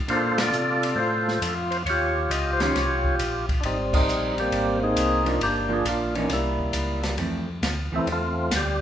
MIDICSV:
0, 0, Header, 1, 5, 480
1, 0, Start_track
1, 0, Key_signature, -1, "major"
1, 0, Tempo, 444115
1, 86, Time_signature, 4, 2, 24, 8
1, 9526, End_track
2, 0, Start_track
2, 0, Title_t, "Tonewheel organ"
2, 0, Program_c, 0, 16
2, 101, Note_on_c, 0, 72, 77
2, 105, Note_on_c, 0, 69, 56
2, 106, Note_on_c, 0, 65, 58
2, 421, Note_off_c, 0, 72, 0
2, 426, Note_off_c, 0, 65, 0
2, 428, Note_off_c, 0, 69, 0
2, 432, Note_on_c, 0, 74, 88
2, 439, Note_on_c, 0, 65, 60
2, 441, Note_on_c, 0, 69, 60
2, 1036, Note_on_c, 0, 72, 83
2, 1058, Note_off_c, 0, 69, 0
2, 1059, Note_off_c, 0, 65, 0
2, 1071, Note_on_c, 0, 69, 56
2, 1072, Note_on_c, 0, 65, 61
2, 1078, Note_off_c, 0, 74, 0
2, 1515, Note_off_c, 0, 69, 0
2, 1528, Note_on_c, 0, 69, 79
2, 1535, Note_off_c, 0, 72, 0
2, 1671, Note_off_c, 0, 69, 0
2, 1846, Note_on_c, 0, 72, 87
2, 1918, Note_off_c, 0, 72, 0
2, 1975, Note_off_c, 0, 65, 0
2, 2012, Note_on_c, 0, 73, 98
2, 2047, Note_on_c, 0, 67, 66
2, 2051, Note_on_c, 0, 65, 65
2, 2493, Note_on_c, 0, 75, 91
2, 2502, Note_off_c, 0, 73, 0
2, 2713, Note_off_c, 0, 75, 0
2, 2735, Note_on_c, 0, 72, 67
2, 2819, Note_off_c, 0, 72, 0
2, 2822, Note_on_c, 0, 73, 89
2, 2826, Note_off_c, 0, 65, 0
2, 2831, Note_off_c, 0, 67, 0
2, 2839, Note_on_c, 0, 65, 62
2, 2843, Note_on_c, 0, 67, 62
2, 3410, Note_off_c, 0, 73, 0
2, 3738, Note_off_c, 0, 65, 0
2, 3740, Note_off_c, 0, 67, 0
2, 3896, Note_on_c, 0, 62, 60
2, 3930, Note_off_c, 0, 62, 0
2, 3945, Note_on_c, 0, 63, 84
2, 3949, Note_on_c, 0, 60, 59
2, 3950, Note_on_c, 0, 55, 61
2, 4084, Note_off_c, 0, 63, 0
2, 4258, Note_off_c, 0, 55, 0
2, 4260, Note_off_c, 0, 60, 0
2, 4266, Note_on_c, 0, 63, 92
2, 4271, Note_on_c, 0, 55, 57
2, 4273, Note_on_c, 0, 60, 61
2, 4702, Note_off_c, 0, 63, 0
2, 4749, Note_off_c, 0, 60, 0
2, 4751, Note_on_c, 0, 67, 113
2, 4757, Note_on_c, 0, 58, 66
2, 4762, Note_on_c, 0, 60, 68
2, 5174, Note_off_c, 0, 55, 0
2, 5185, Note_off_c, 0, 67, 0
2, 5216, Note_off_c, 0, 60, 0
2, 5222, Note_on_c, 0, 63, 73
2, 5227, Note_on_c, 0, 68, 112
2, 5229, Note_on_c, 0, 60, 69
2, 5658, Note_off_c, 0, 58, 0
2, 5678, Note_off_c, 0, 63, 0
2, 5691, Note_on_c, 0, 63, 83
2, 5710, Note_off_c, 0, 68, 0
2, 5814, Note_off_c, 0, 60, 0
2, 5853, Note_off_c, 0, 63, 0
2, 5870, Note_on_c, 0, 67, 94
2, 5871, Note_on_c, 0, 58, 71
2, 5876, Note_on_c, 0, 62, 65
2, 6186, Note_off_c, 0, 67, 0
2, 6195, Note_on_c, 0, 68, 84
2, 6345, Note_off_c, 0, 68, 0
2, 6365, Note_on_c, 0, 65, 79
2, 6643, Note_off_c, 0, 65, 0
2, 6682, Note_on_c, 0, 63, 73
2, 6775, Note_off_c, 0, 58, 0
2, 6778, Note_off_c, 0, 62, 0
2, 6814, Note_off_c, 0, 63, 0
2, 6835, Note_on_c, 0, 58, 51
2, 6838, Note_on_c, 0, 55, 49
2, 6843, Note_on_c, 0, 64, 68
2, 7581, Note_off_c, 0, 64, 0
2, 7738, Note_off_c, 0, 58, 0
2, 7740, Note_off_c, 0, 55, 0
2, 8600, Note_on_c, 0, 64, 73
2, 8602, Note_on_c, 0, 60, 59
2, 8603, Note_on_c, 0, 52, 60
2, 8605, Note_on_c, 0, 57, 62
2, 8740, Note_off_c, 0, 64, 0
2, 8741, Note_off_c, 0, 60, 0
2, 8742, Note_off_c, 0, 52, 0
2, 8743, Note_off_c, 0, 57, 0
2, 8779, Note_on_c, 0, 65, 67
2, 8781, Note_on_c, 0, 60, 52
2, 8785, Note_on_c, 0, 57, 54
2, 9202, Note_off_c, 0, 65, 0
2, 9204, Note_off_c, 0, 60, 0
2, 9205, Note_off_c, 0, 57, 0
2, 9250, Note_on_c, 0, 67, 80
2, 9260, Note_on_c, 0, 55, 63
2, 9526, Note_off_c, 0, 55, 0
2, 9526, Note_off_c, 0, 67, 0
2, 9526, End_track
3, 0, Start_track
3, 0, Title_t, "Hollow-body jazz guitar"
3, 0, Program_c, 1, 26
3, 86, Note_on_c, 1, 58, 46
3, 95, Note_on_c, 1, 62, 50
3, 98, Note_on_c, 1, 69, 50
3, 106, Note_on_c, 1, 72, 54
3, 373, Note_off_c, 1, 58, 0
3, 377, Note_off_c, 1, 62, 0
3, 379, Note_off_c, 1, 69, 0
3, 383, Note_off_c, 1, 72, 0
3, 2818, Note_on_c, 1, 51, 62
3, 2824, Note_on_c, 1, 61, 68
3, 2830, Note_on_c, 1, 67, 62
3, 2835, Note_on_c, 1, 72, 66
3, 2956, Note_off_c, 1, 51, 0
3, 2959, Note_off_c, 1, 61, 0
3, 2961, Note_off_c, 1, 67, 0
3, 2964, Note_off_c, 1, 72, 0
3, 5670, Note_on_c, 1, 53, 58
3, 5678, Note_on_c, 1, 58, 62
3, 5683, Note_on_c, 1, 62, 66
3, 5822, Note_off_c, 1, 53, 0
3, 5826, Note_off_c, 1, 58, 0
3, 5828, Note_off_c, 1, 62, 0
3, 6145, Note_on_c, 1, 53, 58
3, 6146, Note_on_c, 1, 58, 61
3, 6157, Note_on_c, 1, 62, 65
3, 6300, Note_off_c, 1, 53, 0
3, 6300, Note_off_c, 1, 58, 0
3, 6306, Note_off_c, 1, 62, 0
3, 6652, Note_on_c, 1, 52, 63
3, 6653, Note_on_c, 1, 61, 72
3, 6654, Note_on_c, 1, 58, 68
3, 6793, Note_off_c, 1, 52, 0
3, 6794, Note_off_c, 1, 61, 0
3, 6795, Note_off_c, 1, 58, 0
3, 7753, Note_on_c, 1, 52, 43
3, 7765, Note_on_c, 1, 60, 56
3, 7766, Note_on_c, 1, 57, 54
3, 8047, Note_off_c, 1, 52, 0
3, 8053, Note_off_c, 1, 60, 0
3, 8054, Note_off_c, 1, 57, 0
3, 8559, Note_on_c, 1, 52, 54
3, 8574, Note_on_c, 1, 57, 54
3, 8580, Note_on_c, 1, 60, 60
3, 8708, Note_off_c, 1, 52, 0
3, 8715, Note_off_c, 1, 57, 0
3, 8719, Note_off_c, 1, 60, 0
3, 9526, End_track
4, 0, Start_track
4, 0, Title_t, "Tonewheel organ"
4, 0, Program_c, 2, 16
4, 84, Note_on_c, 2, 46, 85
4, 550, Note_off_c, 2, 46, 0
4, 560, Note_on_c, 2, 48, 90
4, 1028, Note_off_c, 2, 48, 0
4, 1034, Note_on_c, 2, 45, 79
4, 1504, Note_off_c, 2, 45, 0
4, 1524, Note_on_c, 2, 41, 88
4, 1990, Note_off_c, 2, 41, 0
4, 2000, Note_on_c, 2, 39, 80
4, 2468, Note_off_c, 2, 39, 0
4, 2481, Note_on_c, 2, 37, 88
4, 2948, Note_off_c, 2, 37, 0
4, 2971, Note_on_c, 2, 36, 78
4, 3433, Note_off_c, 2, 36, 0
4, 3441, Note_on_c, 2, 34, 91
4, 3908, Note_off_c, 2, 34, 0
4, 3923, Note_on_c, 2, 32, 91
4, 4389, Note_off_c, 2, 32, 0
4, 4400, Note_on_c, 2, 34, 90
4, 4868, Note_off_c, 2, 34, 0
4, 4882, Note_on_c, 2, 32, 84
4, 5349, Note_off_c, 2, 32, 0
4, 5352, Note_on_c, 2, 36, 90
4, 5824, Note_off_c, 2, 36, 0
4, 5830, Note_on_c, 2, 31, 86
4, 6303, Note_off_c, 2, 31, 0
4, 6314, Note_on_c, 2, 34, 92
4, 6785, Note_off_c, 2, 34, 0
4, 6791, Note_on_c, 2, 36, 76
4, 7264, Note_off_c, 2, 36, 0
4, 7276, Note_on_c, 2, 37, 86
4, 7747, Note_off_c, 2, 37, 0
4, 7751, Note_on_c, 2, 41, 83
4, 8225, Note_off_c, 2, 41, 0
4, 8231, Note_on_c, 2, 38, 80
4, 8535, Note_off_c, 2, 38, 0
4, 8560, Note_on_c, 2, 38, 38
4, 8643, Note_off_c, 2, 38, 0
4, 8712, Note_on_c, 2, 40, 71
4, 9186, Note_off_c, 2, 40, 0
4, 9200, Note_on_c, 2, 38, 82
4, 9526, Note_off_c, 2, 38, 0
4, 9526, End_track
5, 0, Start_track
5, 0, Title_t, "Drums"
5, 90, Note_on_c, 9, 51, 53
5, 198, Note_off_c, 9, 51, 0
5, 411, Note_on_c, 9, 51, 68
5, 414, Note_on_c, 9, 38, 81
5, 520, Note_off_c, 9, 51, 0
5, 522, Note_off_c, 9, 38, 0
5, 573, Note_on_c, 9, 44, 55
5, 682, Note_off_c, 9, 44, 0
5, 898, Note_on_c, 9, 51, 65
5, 1006, Note_off_c, 9, 51, 0
5, 1385, Note_on_c, 9, 38, 36
5, 1493, Note_off_c, 9, 38, 0
5, 1535, Note_on_c, 9, 44, 55
5, 1535, Note_on_c, 9, 51, 70
5, 1644, Note_off_c, 9, 44, 0
5, 1644, Note_off_c, 9, 51, 0
5, 1855, Note_on_c, 9, 51, 47
5, 1963, Note_off_c, 9, 51, 0
5, 2015, Note_on_c, 9, 51, 58
5, 2123, Note_off_c, 9, 51, 0
5, 2497, Note_on_c, 9, 44, 51
5, 2497, Note_on_c, 9, 51, 73
5, 2605, Note_off_c, 9, 44, 0
5, 2605, Note_off_c, 9, 51, 0
5, 2811, Note_on_c, 9, 51, 42
5, 2813, Note_on_c, 9, 38, 49
5, 2919, Note_off_c, 9, 51, 0
5, 2921, Note_off_c, 9, 38, 0
5, 2978, Note_on_c, 9, 51, 56
5, 2980, Note_on_c, 9, 38, 36
5, 3086, Note_off_c, 9, 51, 0
5, 3088, Note_off_c, 9, 38, 0
5, 3291, Note_on_c, 9, 36, 50
5, 3400, Note_off_c, 9, 36, 0
5, 3452, Note_on_c, 9, 44, 58
5, 3452, Note_on_c, 9, 51, 65
5, 3560, Note_off_c, 9, 44, 0
5, 3560, Note_off_c, 9, 51, 0
5, 3771, Note_on_c, 9, 36, 65
5, 3773, Note_on_c, 9, 51, 49
5, 3880, Note_off_c, 9, 36, 0
5, 3881, Note_off_c, 9, 51, 0
5, 3927, Note_on_c, 9, 51, 55
5, 4035, Note_off_c, 9, 51, 0
5, 4251, Note_on_c, 9, 36, 83
5, 4253, Note_on_c, 9, 49, 75
5, 4359, Note_off_c, 9, 36, 0
5, 4361, Note_off_c, 9, 49, 0
5, 4419, Note_on_c, 9, 44, 60
5, 4527, Note_off_c, 9, 44, 0
5, 4733, Note_on_c, 9, 51, 41
5, 4841, Note_off_c, 9, 51, 0
5, 4888, Note_on_c, 9, 51, 58
5, 4996, Note_off_c, 9, 51, 0
5, 5366, Note_on_c, 9, 44, 54
5, 5366, Note_on_c, 9, 51, 68
5, 5474, Note_off_c, 9, 44, 0
5, 5474, Note_off_c, 9, 51, 0
5, 5687, Note_on_c, 9, 51, 45
5, 5795, Note_off_c, 9, 51, 0
5, 5848, Note_on_c, 9, 51, 62
5, 5956, Note_off_c, 9, 51, 0
5, 6327, Note_on_c, 9, 44, 64
5, 6327, Note_on_c, 9, 51, 65
5, 6435, Note_off_c, 9, 44, 0
5, 6435, Note_off_c, 9, 51, 0
5, 6649, Note_on_c, 9, 51, 44
5, 6757, Note_off_c, 9, 51, 0
5, 6804, Note_on_c, 9, 51, 63
5, 6806, Note_on_c, 9, 38, 33
5, 6912, Note_off_c, 9, 51, 0
5, 6914, Note_off_c, 9, 38, 0
5, 7122, Note_on_c, 9, 36, 50
5, 7230, Note_off_c, 9, 36, 0
5, 7274, Note_on_c, 9, 44, 59
5, 7274, Note_on_c, 9, 51, 66
5, 7382, Note_off_c, 9, 44, 0
5, 7382, Note_off_c, 9, 51, 0
5, 7602, Note_on_c, 9, 51, 46
5, 7604, Note_on_c, 9, 38, 54
5, 7710, Note_off_c, 9, 51, 0
5, 7712, Note_off_c, 9, 38, 0
5, 7757, Note_on_c, 9, 51, 51
5, 7865, Note_off_c, 9, 51, 0
5, 8244, Note_on_c, 9, 44, 51
5, 8244, Note_on_c, 9, 51, 65
5, 8246, Note_on_c, 9, 38, 62
5, 8352, Note_off_c, 9, 44, 0
5, 8352, Note_off_c, 9, 51, 0
5, 8354, Note_off_c, 9, 38, 0
5, 8724, Note_on_c, 9, 51, 50
5, 8832, Note_off_c, 9, 51, 0
5, 9201, Note_on_c, 9, 44, 57
5, 9201, Note_on_c, 9, 51, 71
5, 9203, Note_on_c, 9, 38, 63
5, 9309, Note_off_c, 9, 44, 0
5, 9309, Note_off_c, 9, 51, 0
5, 9311, Note_off_c, 9, 38, 0
5, 9526, End_track
0, 0, End_of_file